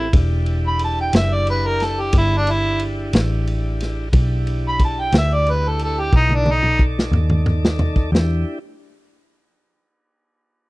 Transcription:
Already playing: picked electric bass A1, harmonica E4
0.13 picked electric bass E1, tonewheel organ D4 E4 G4, kick, ride
0.46 ride
0.67 harmonica B5
0.79 ride
0.84 harmonica A5
1.01 harmonica G5
1.13 picked electric bass F#1, harmonica E5, snare, ride
1.34 harmonica D5
1.47 harmonica B4, ride
1.67 harmonica A#4
1.80 harmonica A4, snare, ride
2.01 harmonica G4
2.13 picked electric bass G1, kick, ride
2.18 harmonica E4
2.37 harmonica D4
2.47 harmonica E4, ride
2.79 ride
3.13 picked electric bass A1, snare, ride
3.47 ride
3.80 snare, ride
4.13 picked electric bass B1, tonewheel organ D4 E4 G4, kick, ride
4.47 ride
4.68 harmonica B5
4.79 kick, ride
4.84 harmonica A5
5.00 harmonica G5
5.12 picked electric bass D2, snare, ride
5.18 harmonica E5
5.34 harmonica D5
5.47 harmonica B4, ride
5.69 harmonica A4
5.79 harmonica A4, ride
6.00 harmonica G4
6.13 picked electric bass B1, tonewheel organ D#4 E4 A#4, harmonica D#4, kick
6.30 high tom
6.35 harmonica D4
6.46 tonewheel organ D#4 A4 D5, high tom
6.51 harmonica D#4
6.63 mid tom
6.79 kick
6.99 snare
7.12 picked electric bass D#2, mid tom
7.30 mid tom
7.46 mid tom
7.65 snare
7.79 floor tom
7.96 kick
8.12 picked electric bass E2, tonewheel organ D4 E4 G4, snare

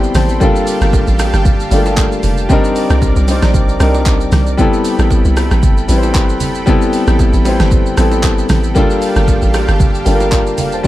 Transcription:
Already playing: log drum bass A1, grand piano G3 B3 C4 E4 G4 A4 D5 E5 G5, analog synth pad A4 G5 B5 C6
0.03 shaker
0.15 log drum bass A1, grand piano E4 C5 A5, cross-stick, snare, open hi-hat, low conga, shaker
0.29 grand piano C4 A4, shaker
0.40 grand piano G3 A#3 D4 F4 A4, analog synth pad G4 F5 G5 A5, kick, low conga, shaker
0.56 shaker
0.67 open hi-hat, shaker
0.81 log drum bass G1, cross-stick, shaker
0.93 kick, high bongo, shaker
1.07 log drum bass A1, shaker
1.19 cross-stick, open hi-hat, high bongo, low bongo, shaker
1.33 log drum bass G1, cross-stick, shaker
1.45 kick, low conga, shaker
1.60 shaker
1.70 log drum bass G1, grand piano G3 A3 D4 F4 A4, open hi-hat, shaker
1.78 grand piano A#3
1.86 low bongo, shaker
1.97 kick, clap, high bongo, shaker
2.12 shaker
2.23 log drum bass F1, open hi-hat, low conga, shaker
2.37 shaker
2.49 grand piano G3 C4 D4 D#4 A#4, analog synth pad A#4 D5 D6, kick, low conga, shaker
2.64 shaker
2.76 open hi-hat, shaker
2.90 log drum bass C2, cross-stick, shaker
3.02 kick, high bongo, shaker
3.16 log drum bass C2, shaker
3.27 grand piano G3 C4 D4 D#4 C5, open hi-hat, high bongo, low bongo, shaker
3.42 log drum bass A#1, cross-stick, snare, shaker
3.54 kick, low conga, shaker
3.69 shaker
3.79 log drum bass C2, grand piano G3 C4 D4 D#4 A#4, cross-stick, open hi-hat, shaker
3.94 low bongo, shaker
4.06 kick, clap, high bongo, shaker
4.21 shaker
4.32 log drum bass C2, cross-stick, snare, open hi-hat, low conga, shaker
4.46 shaker
4.57 grand piano G3 B3 C4 E4 A4, analog synth pad A4 G5 B5, kick, low conga, shaker
4.73 shaker
4.85 open hi-hat, shaker
4.99 log drum bass A1, cross-stick, shaker
5.11 kick, high bongo, shaker
5.25 log drum bass C2, shaker
5.37 cross-stick, open hi-hat, high bongo, low bongo, shaker
5.51 log drum bass A1, cross-stick, shaker
5.63 kick, low conga, shaker
5.78 shaker
5.88 log drum bass A1, grand piano G3 C4 E4 B4, open hi-hat, shaker
5.98 grand piano C5
6.03 low bongo, shaker
6.15 kick, clap, high bongo, shaker
6.29 shaker
6.40 log drum bass G1, open hi-hat, low conga, shaker
6.55 shaker
6.66 grand piano G3 B3 C4 E4 A4, kick, low conga, shaker
6.82 shaker
6.93 open hi-hat, shaker
7.07 log drum bass A1, cross-stick, shaker
7.19 kick, high bongo, shaker
7.33 log drum bass A1, shaker
7.44 grand piano G3 C4 E4 B4 C5, open hi-hat, high bongo, low bongo, shaker
7.60 log drum bass G1, cross-stick, snare, shaker
7.71 kick, low conga, shaker
7.86 shaker
7.96 log drum bass A1, grand piano G3 B3 C4 E4 A4, cross-stick, open hi-hat, shaker
8.11 low bongo, shaker
8.23 kick, clap, high bongo, shaker
8.38 shaker
8.49 log drum bass A1, cross-stick, snare, open hi-hat, low conga, shaker
8.64 shaker
8.75 grand piano G3 A#3 D4 F4 A4, analog synth pad G4 F5 G5 A5, kick, low conga, shaker
8.90 shaker
9.02 open hi-hat, shaker
9.16 log drum bass G1, cross-stick, shaker
9.28 kick, high bongo, shaker
9.42 log drum bass A1, shaker
9.54 cross-stick, open hi-hat, high bongo, low bongo, shaker
9.68 log drum bass G1, cross-stick, shaker
9.80 kick, low conga, shaker
9.95 shaker
10.05 log drum bass G1, grand piano G3 A#3 D4 F4 A4, open hi-hat, shaker
10.15 grand piano A#4
10.20 low bongo, shaker
10.32 grand piano F4 D5, kick, clap, high bongo, shaker
10.47 shaker
10.58 log drum bass F1, grand piano A4 F5, open hi-hat, low conga, shaker
10.72 grand piano C5 A5, shaker
10.83 grand piano G3

